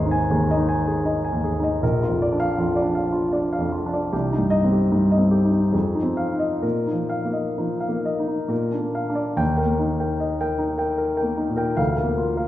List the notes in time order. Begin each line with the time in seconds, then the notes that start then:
Already playing: G#1 D#2 G#4 C5 D#5
0.05 D#4
0.11 G#5
0.30 D#2 G#4
0.51 D#5
0.57 D#4
0.69 G#5
0.87 G#4
1.05 D#4 D#5
1.25 G#5
1.32 D#2
1.44 G#4
1.59 D#4
1.63 D#5
1.82 A#1 A#4
2.03 F4
2.09 F2
2.22 D5
2.32 D4
2.40 F5
2.58 F2 F4
2.76 D5
2.82 D4
2.95 F5
3.12 F4
3.33 D4 D5
3.53 F5
3.58 F2
3.72 F4
3.86 D4
3.93 D5
4.13 C2 G4
4.32 D#4
4.38 G2
4.50 D#5
4.64 C4
4.72 G4
4.92 G2 D#4
5.12 D#5
5.18 C4
5.31 G4
5.45 D#4
5.51 D#4
5.72 F2 G#4
5.95 D#4
6.02 C4
6.17 F5
6.33 D#4
6.39 D#5
6.62 A#2 A#4
6.87 D#4
6.93 F3
7.09 F5
7.25 A#3
7.33 D#5
7.58 F3 D#4
7.80 F5
7.88 A#3
8.05 D#5
8.20 D#4
8.28 D#4
8.48 A#2 A#4
8.72 D4
8.78 A#3
8.95 F5
9.10 D4
9.15 D5
9.37 D#2 G5
9.57 A#4 G5
9.65 A#3
9.79 D#4
10.00 A#4 G5
10.20 D#5
10.41 A#4 G5
10.58 D#4
10.78 A#4 G5
10.98 A#4
11.17 A#4 G5
11.23 A#3
11.37 D#4
11.49 A#2
11.57 A#4 G5
11.77 D2 F5
11.97 A#4 F5
12.03 A#3
12.18 F4
12.37 A#4 F5